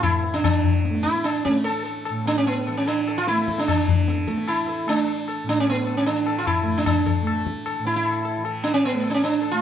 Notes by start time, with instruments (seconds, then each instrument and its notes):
Already playing: tanpura A2 E3 A3
0.03 sitar E4, tabla na, tabla ge
0.24 tabla te
0.31 tanpura E3, sitar D4
0.44 sitar D4, tabla na, tabla ge
0.64 tabla ge
0.85 tabla te
0.90 tanpura A3
0.95 tabla te
1.03 sitar E4, tabla ke
1.16 tabla te
1.24 sitar D4, tabla na
1.45 tanpura A3, sitar C#4, tabla ke
1.57 tabla te
1.64 sitar A4, tabla na
1.85 sitar A4, tabla na
2.05 sitar A4, tabla na
2.10 tanpura A2
2.26 sitar D4, tabla te
2.38 sitar C#4
2.46 sitar B3 A4, tabla tin
2.67 tanpura E3, sitar A4, tabla na
2.77 sitar C#4
2.87 sitar D4, tabla tin
3.07 sitar A4, tabla na
3.18 sitar F4
3.27 tanpura A3, sitar E4 A4, tabla te
3.38 tabla te
3.48 sitar A4, tabla ke
3.58 sitar D4, tabla te
3.68 tanpura E3, sitar D4, tabla na, tabla ge
3.88 tabla ge
4.08 sitar A4, tabla te
4.18 tabla te
4.26 tanpura A3, sitar A4, tabla ke
4.38 tabla te
4.48 sitar E4, tabla na
4.68 sitar A4, tabla te
4.86 tanpura A3, sitar D4, tabla na
5.08 tabla na
5.28 sitar A4, tabla na
5.44 tanpura A2, tabla te
5.49 sitar D4
5.60 sitar C#4
5.67 sitar B3, tabla tin
5.87 tabla na
5.97 sitar C#4
6.02 tanpura E3
6.06 sitar D4, tabla tin
6.27 sitar A4, tabla na
6.38 sitar F4
6.47 sitar E4, tabla na, tabla ge
6.63 tanpura A3, tabla ge
6.78 sitar D4
6.86 sitar D4, tabla na, tabla ge
7.06 sitar A4, tabla ge
7.22 tanpura A3
7.27 tabla na
7.47 tabla ke
7.66 sitar A4, tabla na
7.79 tanpura A2
7.85 sitar E4, tabla te
7.96 sitar E4
8.06 tabla na
8.25 sitar A4, tabla na
8.37 tanpura E3
8.45 sitar A4, tabla na
8.64 sitar D4, tabla te
8.74 sitar C#4
8.84 sitar B3, tabla tin
8.93 tanpura A3
9.04 tabla na
9.10 sitar D4
9.14 sitar C#4
9.24 sitar D4, tabla tin
9.41 sitar A4, tabla na
9.51 tanpura A3, sitar F4